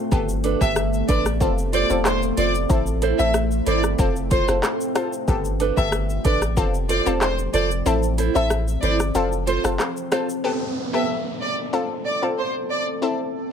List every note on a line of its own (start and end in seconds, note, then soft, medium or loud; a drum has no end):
0.00 10.40 A3 medium
0.00 0.11 F4 medium
0.12 0.55 G1 loud
0.12 1.40 D3 medium
0.12 1.40 G3 medium
0.12 0.31 B3 loud
0.12 1.40 B3 medium
0.12 0.31 G4 medium
0.12 1.40 G4 medium
0.12 0.31 A4 loud
0.12 kick loud
0.12 shaker medium
0.29 shaker medium
0.44 0.59 D4 medium
0.44 0.60 A4 medium
0.44 0.60 B4 medium
0.44 closed hi-hat medium
0.44 shaker medium
0.61 1.03 G1 loud
0.61 0.78 B3 medium
0.61 0.78 G4 medium
0.61 0.79 A4 medium
0.61 0.71 E5 medium
0.61 kick medium
0.61 shaker medium
0.76 cross-stick loud
0.76 shaker medium
0.93 shaker medium
1.08 1.42 A1 loud
1.08 1.24 D4 medium
1.08 1.24 A4 medium
1.08 1.24 B4 medium
1.08 1.19 D5 medium
1.08 kick medium
1.08 closed hi-hat medium
1.08 shaker medium
1.26 cross-stick medium
1.26 shaker medium
1.40 1.84 F1 loud
1.40 1.60 C4 medium
1.40 3.96 C4 medium
1.40 2.69 F4 medium
1.40 1.60 F4 medium
1.40 1.60 A4 loud
1.40 kick medium
1.40 shaker medium
1.58 shaker medium
1.73 1.88 F4 medium
1.73 1.89 A4 loud
1.73 1.89 C5 loud
1.73 1.84 D5 medium
1.73 closed hi-hat medium
1.73 shaker medium
1.90 2.32 E1 medium
1.90 2.07 C4 medium
1.90 2.07 F4 medium
1.90 2.08 A4 medium
1.90 shaker medium
2.05 2.16 C5 medium
2.05 cross-stick loud
2.05 clap loud
2.05 shaker medium
2.22 muted nylon-string guitar stroke soft
2.22 shaker medium
2.37 2.66 F1 loud
2.37 2.53 F4 medium
2.37 2.53 A4 loud
2.37 2.53 C5 loud
2.37 2.48 D5 medium
2.37 closed hi-hat medium
2.37 shaker medium
2.55 shaker medium
2.69 3.13 A1 loud
2.69 2.89 C4 medium
2.69 2.89 E4 medium
2.69 3.98 E4 loud
2.69 2.89 A4 loud
2.69 kick loud
2.69 shaker medium
2.87 shaker medium
3.02 3.17 E4 medium
3.02 3.18 A4 medium
3.02 3.18 C5 loud
3.02 closed hi-hat medium
3.02 shaker medium
3.19 3.61 A1 loud
3.19 3.36 C4 medium
3.19 3.37 E4 medium
3.19 3.37 A4 medium
3.19 3.29 E5 medium
3.19 shaker medium
3.34 cross-stick loud
3.34 shaker medium
3.51 shaker medium
3.66 3.95 G1 loud
3.66 3.82 E4 medium
3.66 3.82 A4 medium
3.66 3.82 C5 medium
3.66 3.77 D5 medium
3.66 closed hi-hat medium
3.66 shaker medium
3.83 cross-stick medium
3.83 shaker medium
3.99 4.42 F1 loud
3.99 4.18 C4 loud
3.99 5.27 C4 medium
3.99 4.18 F4 medium
3.99 5.27 F4 medium
3.99 4.18 A4 loud
3.99 kick medium
3.99 shaker medium
4.16 shaker medium
4.31 4.46 F4 medium
4.31 4.47 A4 medium
4.31 4.42 C5 medium
4.31 4.47 C5 medium
4.31 kick loud
4.31 closed hi-hat medium
4.31 shaker medium
4.48 4.62 F1 medium
4.48 4.65 C4 medium
4.48 4.66 F4 medium
4.48 4.66 A4 medium
4.48 cross-stick medium
4.48 shaker medium
4.63 cross-stick loud
4.63 clap loud
4.63 shaker medium
4.81 shaker medium
4.95 5.15 C4 medium
4.95 5.11 F4 medium
4.95 5.15 F4 medium
4.95 5.15 A4 medium
4.95 5.11 A4 loud
4.95 5.11 C5 loud
4.95 cross-stick loud
4.95 closed hi-hat medium
4.95 shaker medium
5.13 shaker medium
5.28 5.71 G1 loud
5.28 6.56 D3 medium
5.28 6.56 G3 medium
5.28 5.47 B3 medium
5.28 6.56 B3 medium
5.28 5.47 G4 medium
5.28 6.56 G4 loud
5.28 5.47 A4 loud
5.28 kick loud
5.28 shaker medium
5.45 shaker medium
5.60 5.75 D4 medium
5.60 5.76 A4 medium
5.60 5.76 B4 medium
5.60 closed hi-hat medium
5.60 shaker medium
5.77 6.19 G1 loud
5.77 5.94 B3 medium
5.77 5.95 G4 medium
5.77 5.95 A4 medium
5.77 5.87 E5 medium
5.77 kick medium
5.77 shaker medium
5.92 cross-stick loud
5.92 shaker medium
6.10 shaker medium
6.24 6.58 A1 loud
6.24 6.40 D4 medium
6.24 6.40 A4 medium
6.24 6.40 B4 medium
6.24 6.35 D5 medium
6.24 kick medium
6.24 closed hi-hat medium
6.24 shaker medium
6.42 cross-stick medium
6.42 shaker medium
6.57 7.00 F1 loud
6.57 7.85 F3 medium
6.57 6.76 C4 loud
6.57 9.13 C4 medium
6.57 6.76 F4 medium
6.57 6.76 A4 loud
6.57 kick medium
6.57 shaker medium
6.74 shaker medium
6.89 7.04 F4 medium
6.89 7.05 A4 medium
6.89 7.05 C5 medium
6.89 7.00 D5 medium
6.89 closed hi-hat medium
6.89 shaker medium
7.06 7.48 E1 medium
7.06 7.24 C4 medium
7.06 7.24 F4 medium
7.06 7.24 A4 medium
7.06 shaker medium
7.21 7.32 C5 medium
7.21 cross-stick loud
7.21 clap loud
7.21 shaker medium
7.38 muted nylon-string guitar stroke medium
7.38 shaker medium
7.53 7.82 F1 loud
7.53 7.69 F4 medium
7.53 7.69 A4 medium
7.53 7.70 C5 medium
7.53 7.64 D5 medium
7.53 closed hi-hat medium
7.53 shaker medium
7.71 shaker medium
7.86 8.29 A1 loud
7.86 9.14 E3 medium
7.86 8.05 C4 medium
7.86 8.05 E4 medium
7.86 8.05 A4 loud
7.86 shaker medium
8.03 shaker medium
8.18 8.33 E4 medium
8.18 8.34 A4 medium
8.18 8.34 C5 loud
8.18 closed hi-hat medium
8.18 shaker medium
8.35 8.77 A1 loud
8.35 8.53 C4 medium
8.35 8.53 E4 medium
8.35 8.53 A4 medium
8.35 8.45 E5 medium
8.35 shaker medium
8.50 cross-stick loud
8.50 shaker medium
8.68 shaker medium
8.82 9.11 G1 loud
8.82 8.98 E4 medium
8.82 8.98 A4 medium
8.82 8.99 C5 loud
8.82 8.93 D5 medium
8.82 closed hi-hat medium
8.82 shaker medium
9.00 cross-stick medium
9.00 shaker medium
9.15 9.58 F1 loud
9.15 10.43 F3 medium
9.15 9.34 C4 loud
9.15 10.43 C4 medium
9.15 9.34 F4 medium
9.15 9.34 A4 loud
9.15 shaker medium
9.32 shaker medium
9.47 9.62 F4 medium
9.47 9.63 A4 medium
9.47 9.58 C5 medium
9.47 9.63 C5 loud
9.47 closed hi-hat medium
9.47 shaker medium
9.64 9.78 F1 medium
9.64 9.82 C4 medium
9.64 9.82 F4 medium
9.64 9.82 A4 medium
9.64 cross-stick loud
9.64 shaker medium
9.80 cross-stick loud
9.80 clap loud
9.80 shaker medium
9.97 shaker medium
10.11 10.31 C4 medium
10.11 10.27 F4 medium
10.11 10.31 F4 medium
10.11 10.31 A4 medium
10.11 10.27 A4 medium
10.11 10.28 C5 medium
10.11 cross-stick loud
10.11 closed hi-hat medium
10.11 shaker medium
10.29 shaker medium
10.44 11.72 G3 medium
10.44 11.72 A3 medium
10.44 10.63 B3 medium
10.44 11.72 B3 medium
10.44 11.72 D4 medium
10.44 10.63 G4 medium
10.44 13.52 A4 medium
10.44 10.63 A4 loud
10.44 downlifter medium
10.93 11.11 B3 medium
10.93 11.11 G4 medium
10.93 11.11 A4 medium
10.93 11.03 E5 medium
11.41 11.51 D5 medium
11.73 11.92 C4 medium
11.73 13.52 C4 medium
11.73 11.92 F4 medium
11.73 13.01 F4 medium
11.73 11.92 A4 loud
12.06 12.16 D5 medium
12.22 12.40 C4 medium
12.22 12.40 F4 medium
12.22 12.40 A4 medium
12.38 12.48 C5 medium
12.70 12.81 D5 medium
13.02 13.21 C4 medium
13.02 13.52 E4 medium
13.02 13.21 E4 medium
13.02 13.21 A4 medium